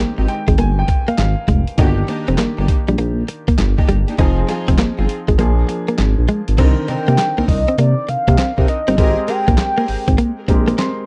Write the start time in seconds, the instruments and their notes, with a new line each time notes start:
Already playing: grand piano D#3 G#3 C4 G4
0.00 clean electric guitar A#3
0.17 analog synth bass G#1, string section G#3 C4 D#4 G4, muted clean electric guitar stroke
0.28 grand piano G5, closed hi-hat
0.48 analog synth bass G#1, clean electric guitar G#3, kick, closed hi-hat
0.58 analog synth bass G1, clean electric guitar A#3, grand piano G#5, closed hi-hat
0.79 grand piano G5
0.88 muted clean electric guitar stroke, kick, closed hi-hat
1.08 clean electric guitar A#3, grand piano F5, closed hi-hat
1.18 analog synth bass G#1, grand piano F5, snare, clap, closed hi-hat
1.48 analog synth bass F1, clean electric guitar G#3, kick, closed hi-hat
1.67 closed hi-hat
1.78 analog synth bass G1, grand piano D#3 A#3 D4 F#4, string section A#3 D4 D#4 G4, clean electric guitar D#4, kick, closed hi-hat
1.87 grand piano G4
2.08 string section A#3 D4 D#4 G4, muted clean electric guitar stroke, closed hi-hat
2.28 analog synth bass F1, clean electric guitar C4, closed hi-hat
2.38 analog synth bass G1, clean electric guitar A#3, snare, clap, closed hi-hat
2.58 analog synth bass G1, string section A#3 D4 D#4 G4, muted clean electric guitar stroke
2.68 kick, closed hi-hat
2.88 analog synth bass A#1, clean electric guitar G3, closed hi-hat
2.98 analog synth bass A#1, clean electric guitar A#3, closed hi-hat
3.28 muted clean electric guitar stroke, closed hi-hat
3.48 clean electric guitar A#3, kick, closed hi-hat
3.58 analog synth bass G1, snare, clap, closed hi-hat
3.78 string section A#3 D4 D#4 G4, kick
3.89 analog synth bass G1, clean electric guitar G3, closed hi-hat
4.08 string section A#3 D4 D#4 G4, closed hi-hat
4.18 analog synth bass F1, grand piano F3 C4 D#4 G#4, string section C4 D#4 F4 G#4, clean electric guitar D#4, kick, closed hi-hat
4.48 string section C4 D#4 F4 G#4, muted clean electric guitar stroke, snare, closed hi-hat
4.68 analog synth bass F1, clean electric guitar C4, kick, closed hi-hat
4.78 analog synth bass G1, clean electric guitar A#3, snare, clap, closed hi-hat
4.98 analog synth bass G1, string section C4 D#4 F4 G#4, muted clean electric guitar stroke
5.09 closed hi-hat
5.28 analog synth bass G#1, clean electric guitar G#3, kick, closed hi-hat
5.38 analog synth bass A#1, grand piano F3 A#3 D4 G#4, clean electric guitar A#3, closed hi-hat
5.69 muted clean electric guitar stroke, closed hi-hat
5.88 clean electric guitar A#3, closed hi-hat
5.98 analog synth bass G#1, snare, clap, closed hi-hat
6.18 analog synth bass A#1
6.28 clean electric guitar G#3, closed hi-hat
6.48 analog synth bass G#1, closed hi-hat
6.58 analog synth bass C2, grand piano D3 C4 A#4, string section C4 D4 D#4 A#4, clean electric guitar C4, kick, closed hi-hat, crash
6.64 grand piano D#3
6.88 analog synth bass C3, string section C4 D4 D#4 A#4, soft synth lead G5, muted clean electric guitar stroke, closed hi-hat
7.08 analog synth bass C3, clean electric guitar A#3, closed hi-hat
7.18 snare, clap, closed hi-hat
7.37 analog synth bass C2, clean electric guitar A#3, string section C4 D4 D#4 A#4
7.48 analog synth bass C2, soft synth lead D#5, muted clean electric guitar stroke, kick, open hi-hat
7.68 clean electric guitar C4, closed hi-hat
7.78 analog synth bass C3, clean electric guitar A#3, soft synth lead D5, closed hi-hat
8.08 analog synth bass C3, soft synth lead F5, muted clean electric guitar stroke, closed hi-hat
8.28 analog synth bass C3, clean electric guitar A#3, kick, closed hi-hat
8.38 clean electric guitar C4, snare, clap, closed hi-hat
8.58 analog synth bass C3, string section C4 D4 D#4 A#4, kick
8.68 soft synth lead D#5, muted clean electric guitar stroke, closed hi-hat
8.87 analog synth bass G1, string section C4 D4 D#4 A#4, clean electric guitar C4, closed hi-hat
8.97 analog synth bass G#1, grand piano G#3 C4 G4 A#4, clean electric guitar G#3, string section C4 G4 G#4 A#4, soft synth lead D#5, kick, closed hi-hat
9.28 string section C4 G4 G#4 A#4, soft synth lead G5, muted clean electric guitar stroke, closed hi-hat
9.48 analog synth bass A#1, clean electric guitar A#3, kick, closed hi-hat
9.58 snare, clap, closed hi-hat
9.77 clean electric guitar A#3, string section C4 G4 G#4 A#4
9.88 analog synth bass G#1, muted clean electric guitar stroke, open hi-hat
10.08 analog synth bass G#1, clean electric guitar C4, kick, closed hi-hat
10.18 clean electric guitar A#3, closed hi-hat
10.48 analog synth bass A#1, grand piano G#3 C4 G4 A#4, muted clean electric guitar stroke, kick, closed hi-hat
10.68 clean electric guitar A#3, closed hi-hat
10.78 clean electric guitar C4, grand piano C6, snare, clap, closed hi-hat